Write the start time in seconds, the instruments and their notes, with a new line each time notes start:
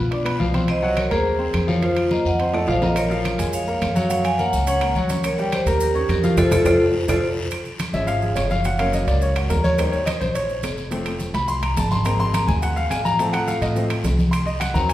Already playing: upright bass B2, vibraphone F4
0.11 grand piano D4 D5 D6, high timbale, long guiro
0.25 grand piano B3 B4 B5, high conga, high timbale, claves
0.39 upright bass C2, grand piano F3 F4 F5, high conga, short guiro
0.53 grand piano C4 C5 C6, high conga, high timbale, short guiro
0.68 vibraphone C5 D#5, high conga, high timbale, long guiro, claves
0.82 grand piano F#3 F#4 F#5
0.97 vibraphone A#4 C#5, high conga, high timbale, short guiro, claves
1.11 upright bass D#2, grand piano A#3 A#4 A#5, vibraphone G#4 C5, high timbale, short guiro
1.25 high conga, long guiro
1.39 grand piano C4 C5 C6, high conga
1.54 upright bass F2, high conga, high timbale, short guiro, claves
1.67 grand piano F3 F4 F5, vibraphone A#4 C#5, high conga, short guiro
1.82 grand piano F3 F4 F5, vibraphone F4 C5, high conga, high timbale, long guiro
1.96 high conga, high timbale, claves
2.11 grand piano A#3 A#4 A#5, vibraphone C5 D#5, high conga, short guiro
2.25 upright bass F2, vibraphone D#5 F#5, high conga, short guiro
2.39 grand piano C4 C5 C6, high conga, high timbale, long guiro
2.53 grand piano A3 A4 A5, high conga, high timbale, claves
2.67 upright bass A#1, grand piano F3 F4 F5, vibraphone C5 F5, high conga, high timbale, short guiro
2.82 grand piano A#3 A#4 A#5, vibraphone C5 D#5, high conga, low timbale, short guiro
2.96 vibraphone A#4 C#5, high timbale, long guiro, claves, maracas
3.10 grand piano F3 F4 F5, maracas
3.25 high conga, high timbale, short guiro, claves, maracas
3.38 upright bass F2, grand piano G#3 G#4 G#5, high conga, high timbale, short guiro, maracas
3.53 vibraphone C#5 F5, high conga, long guiro, maracas
3.67 grand piano A#3 A#4 A#5, vibraphone C#5 F5, high conga, maracas
3.81 upright bass F#2, high conga, high timbale, low timbale, short guiro, claves, maracas
3.95 grand piano F#3 F#4 F#5, vibraphone C#5 F5, high conga, short guiro, maracas
4.09 grand piano F#3 F#4 F#5, vibraphone C#5 F5, high conga, high timbale, long guiro, maracas
4.24 vibraphone F5 G#5, high conga, high timbale, claves, maracas
4.38 grand piano A#3 A#4 A#5, vibraphone C#5 F#5, high conga, short guiro, maracas
4.53 upright bass C#2, high conga, short guiro, maracas
4.67 grand piano C#4 C#5 C#6, vibraphone C#5 F#5, high conga, high timbale, long guiro, maracas
4.81 grand piano A#3 A#4 A#5, high conga, high timbale, claves, maracas
4.95 upright bass D#2, grand piano F#3 F#4 F#5, high conga, short guiro, maracas
5.09 grand piano C#4 C#5 C#6, high conga, high timbale, short guiro, maracas
5.24 vibraphone A#4 C#5, high conga, high timbale, long guiro, claves, maracas
5.38 grand piano G3 G4 G5, high conga, maracas
5.52 vibraphone G4 C5, high conga, high timbale, short guiro, claves, maracas
5.66 upright bass D#2, grand piano A#3 A#4 A#5, vibraphone G4 A#4, high conga, high timbale, short guiro, maracas
5.80 vibraphone G4 A#4, high conga, long guiro, maracas
5.95 grand piano C#4 C#5 C#6, vibraphone D#4 G4, high conga, maracas
6.09 upright bass F2, vibraphone G4 A#4, high conga, high timbale, low timbale, short guiro, claves, maracas
6.23 grand piano F3 F4 F5, high conga, short guiro, maracas
6.37 upright bass F2, grand piano F4 A4 C5, vibraphone F4 A4 C5, low conga, high timbale, long guiro, claves, maracas
6.51 upright bass F2, grand piano F4 A4 C5, vibraphone F4 A4 C5, low conga, high timbale, long guiro, claves, maracas
6.64 upright bass F2, grand piano F4 A4 C5, vibraphone F4 A4 C5, low conga, high timbale, long guiro, claves, maracas
7.08 upright bass F2, grand piano F4 A4 C5, vibraphone F4 A4 C5, low conga, high timbale, long guiro, claves, maracas
7.51 high conga, high timbale, long guiro, claves, maracas
7.65 high conga, maracas
7.79 high conga, high timbale, low timbale, short guiro, claves, maracas
7.93 upright bass G#1, grand piano F3 G#3 C#4 E5, high conga, short guiro, maracas
8.07 grand piano F5, high conga, high timbale, long guiro, maracas
8.22 grand piano G#4, high conga, maracas
8.35 upright bass F#1, grand piano C#5, high conga, high timbale, low timbale, short guiro, claves, maracas
8.50 grand piano F5, high conga, short guiro, maracas
8.64 grand piano F#5, high conga, high timbale, long guiro, maracas
8.79 grand piano F#3 A#3 C#4 F5, high conga, high timbale, claves, maracas
8.93 grand piano D#5, high conga, low timbale, short guiro, maracas
9.06 upright bass C#2, grand piano D5, high conga, high timbale, short guiro, maracas
9.21 grand piano C#5, high conga, long guiro, maracas
9.36 grand piano F#4, high conga, high timbale, claves, maracas
9.50 upright bass D#2, grand piano A#4, high conga, high timbale, low timbale, short guiro, maracas
9.64 grand piano C#5, high conga, short guiro, maracas
9.78 grand piano G3 A#3 D#4 C5, high conga, high timbale, long guiro, claves, maracas
9.92 grand piano C#5, high conga, maracas
10.06 grand piano D#5, high conga, high timbale, low timbale, short guiro, claves, maracas
10.21 upright bass A#1, grand piano C5, high conga, short guiro, maracas
10.35 grand piano C#5, high conga, high timbale, long guiro, maracas
10.49 high conga, maracas
10.63 upright bass F1, high conga, high timbale, low timbale, short guiro, claves, maracas
10.77 short guiro, maracas
10.91 grand piano F3 A3 C4, high conga, high timbale, long guiro, maracas
11.06 high conga, high timbale, claves, maracas
11.20 high conga, low timbale, short guiro, maracas
11.34 upright bass C2, grand piano B5, high conga, high timbale, short guiro, maracas
11.48 grand piano C6, high conga, long guiro, maracas
11.63 grand piano A#5, high conga, high timbale, claves, maracas
11.76 upright bass G#1, grand piano A5, high conga, high timbale, low timbale, short guiro, maracas
11.91 grand piano C6, high conga, short guiro, maracas
12.05 grand piano G#3 A#3 C4 A#5, high conga, high timbale, long guiro, claves, maracas
12.19 grand piano C6, high conga, maracas
12.34 grand piano A#5, high conga, high timbale, low timbale, short guiro, claves, maracas
12.47 upright bass D#2, grand piano G#5, high conga, short guiro, maracas
12.62 grand piano F#5, high conga, high timbale, long guiro, maracas
12.76 grand piano F5, high conga, maracas
12.90 upright bass A1, grand piano G#5, high conga, high timbale, low timbale, short guiro, claves, maracas
13.05 grand piano A#5, high conga, short guiro, maracas
13.19 grand piano F3 A3 C4 A5, high conga, high timbale, long guiro, maracas
13.33 grand piano F#5, high conga, high timbale, claves, maracas
13.47 grand piano F5, high conga, low timbale, short guiro, maracas
13.61 upright bass A2, grand piano D#5, high conga, high timbale, short guiro, maracas
13.75 grand piano F3 A3 C4, long guiro, maracas
13.90 high conga, high timbale, claves, maracas
14.03 upright bass C2, high conga, high timbale, low timbale, short guiro, maracas
14.19 high conga, short guiro, maracas
14.31 grand piano C6, high timbale, long guiro, claves, maracas
14.46 grand piano D#5, high conga, maracas
14.60 grand piano F#5, high conga, high timbale, low timbale, short guiro, claves, maracas
14.74 upright bass D#2, grand piano D#3 F#3 C4 A#5, high conga, short guiro, maracas
14.89 grand piano G#5, high conga, high timbale, long guiro, maracas